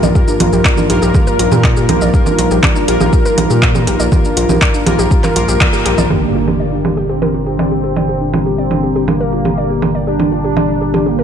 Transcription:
Already playing: synth drone G2, ambient pad F3 D#4 A#4, analog polysynth A#3 F4 A#4
0.03 analog synth bass A#1, synth arpeggio sound D5, low conga, shaker
0.15 analog polysynth A#3 F4 A#4, synth arpeggio sound G4, kick, shaker
0.28 synth arpeggio sound D4, shaker
0.40 analog synth bass A#1, synth arpeggio sound F4, closed hi-hat, low conga
0.53 analog synth bass A#1, synth arpeggio sound G4, shaker
0.65 synth arpeggio sound D5, kick, clap, shaker
0.77 synth arpeggio sound D4, low conga, shaker
0.90 analog synth bass A#1, analog polysynth A#3 F4 A#4, synth arpeggio sound G4, closed hi-hat
1.02 analog synth bass A#1, synth arpeggio sound G4, shaker
1.15 synth arpeggio sound G4, kick, low conga, shaker
1.27 synth arpeggio sound A#4, shaker
1.39 analog synth bass A#1, synth arpeggio sound F4, closed hi-hat
1.52 analog synth bass A#2, synth arpeggio sound G4, low conga, shaker
1.64 synth arpeggio sound D5, kick, clap, shaker
1.77 synth arpeggio sound G4, shaker
1.89 analog synth bass A#1, synth arpeggio sound G4, closed hi-hat, low conga
2.01 analog synth bass A#1, synth arpeggio sound D5, shaker
2.14 analog polysynth A#3 F4 A#4, synth arpeggio sound G4, kick, shaker
2.26 synth arpeggio sound D4, low conga, shaker
2.39 analog synth bass A#1, synth arpeggio sound F4, closed hi-hat
2.51 analog synth bass A#1, synth arpeggio sound G4, shaker
2.63 synth arpeggio sound D5, kick, clap, low conga, shaker
2.76 synth arpeggio sound D4, shaker
2.88 analog synth bass A#1, analog polysynth A#3 F4 A#4, synth arpeggio sound G4, closed hi-hat
3.01 analog synth bass A#1, synth arpeggio sound G4, low conga, shaker
3.13 synth arpeggio sound G4, kick, shaker
3.26 synth arpeggio sound A#4, shaker
3.38 analog synth bass A#1, synth arpeggio sound F4, closed hi-hat, low conga
3.50 analog synth bass A#2, synth arpeggio sound G4, shaker
3.62 synth arpeggio sound D5, kick, clap, shaker
3.75 synth arpeggio sound G4, low conga, shaker
3.87 analog synth bass A#1, synth arpeggio sound G4, closed hi-hat
4.00 analog synth bass A#1, synth arpeggio sound D5, shaker
4.12 analog polysynth A#3 F4 A#4, synth arpeggio sound G4, kick, low conga, shaker
4.24 synth arpeggio sound D4, shaker
4.37 analog synth bass A#1, synth arpeggio sound F4, closed hi-hat
4.49 analog synth bass A#1, synth arpeggio sound G4, low conga, shaker
4.62 synth arpeggio sound D5, kick, clap, shaker
4.74 synth arpeggio sound D4, shaker
4.86 analog synth bass A#1, analog polysynth A#3 F4 A#4, synth arpeggio sound G4, closed hi-hat, low conga
4.99 analog synth bass A#1, synth arpeggio sound G4, shaker
5.11 synth arpeggio sound G4, kick, shaker
5.24 synth arpeggio sound A#4, clap, low conga, shaker
5.36 analog synth bass A#1, analog polysynth A#3 F4 A#4, synth arpeggio sound F4, closed hi-hat
5.48 analog synth bass A#1, synth arpeggio sound G4, shaker
5.61 synth arpeggio sound D5, kick, clap, low conga, shaker
5.73 synth arpeggio sound G4, shaker
5.86 analog synth bass A#1, synth arpeggio sound G4, closed hi-hat
5.98 analog synth bass A#1, synth arpeggio sound D5, low conga, shaker
6.10 analog synth bass G1, synth drone A#2, analog polysynth G3 D4 G4, analog synth lead A#3, synth arpeggio sound G4, ambient pad G4 F5 A#5, impact, low conga
6.23 synth arpeggio sound D4
6.35 synth arpeggio sound F4
6.48 synth arpeggio sound G4, low conga
6.60 synth arpeggio sound D5
6.72 synth arpeggio sound D4
6.85 synth arpeggio sound G4, low conga
6.97 synth arpeggio sound G4
7.09 analog synth lead C4, synth arpeggio sound G4
7.22 synth arpeggio sound A#4, low conga
7.34 synth arpeggio sound F4
7.47 synth arpeggio sound G4
7.59 synth arpeggio sound D5, low conga
7.72 synth arpeggio sound G4
7.84 synth arpeggio sound G4
7.96 synth arpeggio sound D5, low conga
8.09 synth arpeggio sound G4
8.21 synth arpeggio sound D4
8.34 synth arpeggio sound F4, low conga
8.46 synth arpeggio sound G4
8.58 analog synth lead C4, synth arpeggio sound D5
8.71 synth arpeggio sound D4, low conga
8.83 synth arpeggio sound G4
8.96 synth arpeggio sound G4
9.08 analog synth lead A#3, synth arpeggio sound G4, low conga
9.21 synth arpeggio sound A#4
9.33 synth arpeggio sound F4
9.45 synth arpeggio sound G4, low conga
9.58 synth arpeggio sound D5
9.70 synth arpeggio sound G4
9.82 synth arpeggio sound G4, low conga
9.95 synth arpeggio sound D5
10.07 analog polysynth G3 D4 G4, analog synth lead D4, synth arpeggio sound G4, ambient pad G5
10.20 synth arpeggio sound D4, low conga
10.32 synth arpeggio sound F4
10.44 synth arpeggio sound G4
10.57 synth arpeggio sound D5, low conga
10.69 synth arpeggio sound D4
10.81 synth arpeggio sound G4
10.94 synth arpeggio sound G4, low conga
11.06 analog synth lead A#3, synth arpeggio sound G4
11.19 synth arpeggio sound A#4

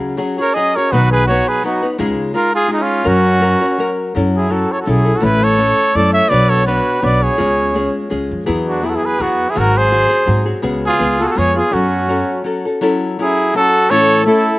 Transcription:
Already playing: nylon-string guitar C#3 F#3 C#4 F#4 G#4
0.17 nylon-string guitar F#3 C#4 F#4 G#4
0.38 nylon-string guitar C#4 F#4 G#4, trumpet A#4 C#5
0.55 nylon-string guitar F#3 C#4 F#4 G#4, trumpet G#4 D#5
0.75 nylon-string guitar C#4 F#4 G#4, trumpet A#4 C#5
0.92 upright bass B1, nylon-string guitar B2 D#3 F#3 B3 D#4 B4, trumpet F#4 B4
1.12 trumpet G#4 B4
1.27 nylon-string guitar F#3 B3, trumpet F#4 C#5
1.31 nylon-string guitar D#4 B4
1.48 trumpet G#4 B4
1.63 nylon-string guitar F#3 B3 D#4 B4, trumpet D#4 F#4
1.83 nylon-string guitar F#3 B3 D#4 B4
1.98 upright bass C#2, nylon-string guitar C#3 G#3 D#4 F4 G#4
2.34 nylon-string guitar G#3 D#4 F4 G#4, trumpet F4 A#4
2.54 trumpet F4 G#4
2.68 nylon-string guitar G#3 D#4 F4 G#4, trumpet G#3
2.73 trumpet D#4
2.80 trumpet C#4 F4
3.04 upright bass F#2, nylon-string guitar F#3 C#4 F#4 A#4, trumpet C#4 F#4
3.41 nylon-string guitar F#3 C#4 F#4 A#4
3.61 nylon-string guitar C#4 F#4 A#4
3.78 nylon-string guitar F#3 C#4 F#4 A#4
4.15 upright bass F#2, nylon-string guitar F#3 C#4 E4 A4
4.37 trumpet E4 G#4
4.49 nylon-string guitar F#3 C#4 E4 A4, trumpet F#4 A4
4.72 trumpet A4 C#5
4.80 trumpet F#4 A4
4.86 upright bass B1, nylon-string guitar F#3 C#4 E4 A4, trumpet E4
4.90 trumpet G#4
5.05 nylon-string guitar C#4 E4 A4
5.15 trumpet F#4 A4
5.20 upright bass A1, nylon-string guitar A2 E3 A3 C#4 E4 A4, trumpet B4
5.24 trumpet E4
5.43 trumpet A4 C#5
5.58 nylon-string guitar A3 C#4 E4 A4
5.95 upright bass F#2, nylon-string guitar A3 C#4 E4 A4, trumpet A4 D5
6.14 trumpet C#5 E5
6.29 upright bass B1, nylon-string guitar B2 F#3 B3 D4 F#4 C#5, trumpet B4 D5
6.50 trumpet A4 C#5
6.66 nylon-string guitar B3 D4 F#4 C#5, trumpet F#4 B4
7.02 upright bass B1, nylon-string guitar B3 D4 F#4 C#5, trumpet B4 D5
7.23 trumpet G#4 C#5
7.38 upright bass C#2, nylon-string guitar C#3 G#3 C#4 F4 G#4
7.74 nylon-string guitar G#3 C#4 F4 G#4
8.10 upright bass C#2, nylon-string guitar G#3 C#4 F4 G#4
8.31 upright bass F2
8.46 upright bass E2, nylon-string guitar E3 F#3 B3 E4 G#4
8.67 trumpet D4 F#4
8.82 nylon-string guitar F#3 B3 E4 G#4, trumpet E4 G#4
8.90 trumpet F#4 A4
8.95 trumpet E4 G#4
9.04 trumpet G#4 B4
9.18 upright bass E2, nylon-string guitar F#3 B3 E4 G#4, trumpet B3 F#4
9.49 trumpet E4 G#4
9.55 upright bass G#1, nylon-string guitar G#2 D#3 F#3 C4 F#4 G#4, trumpet F#4 A#4
9.77 trumpet G#4 C5
9.91 nylon-string guitar F#3 C4 F#4 G#4
10.09 nylon-string guitar F#3 C4 F#4 G#4
10.26 upright bass G#2, nylon-string guitar F#3 C4 F#4 G#4
10.45 nylon-string guitar F#3 C4 F#4 G#4
10.62 upright bass C#2, nylon-string guitar C#3 G#3 B3 F#4 G#4
10.85 trumpet F4 G#4
10.99 upright bass C#2, nylon-string guitar G#3 B3 F4 G#4
11.19 nylon-string guitar B3 F4 G#4, trumpet F#4 A4
11.23 trumpet F4 G#4
11.29 trumpet F#4 A4
11.35 upright bass F2, nylon-string guitar G#3 B3 F4 G#4, trumpet G#4 C#5
11.55 nylon-string guitar B3 F4 G#4, trumpet F4 G#4
11.71 upright bass F#2, nylon-string guitar F#3 C#4 F#4 A4, trumpet C#4 F#4
12.09 nylon-string guitar F#3 C#4 F#4 A4
12.44 nylon-string guitar F#3 C#4 F#4 A4
12.65 nylon-string guitar C#4 F#4 A4
12.81 nylon-string guitar F#3 C#4 E4 A4
13.19 nylon-string guitar F#3 C#4 E4, trumpet E4 G#4
13.54 nylon-string guitar F#3 C#4 E4 A4, trumpet F#4 A4
13.90 nylon-string guitar A2 E3 A3 C#4 E4 A4, trumpet A4 C#5
14.24 nylon-string guitar A3 C#4 E4 A4, trumpet E4 A4

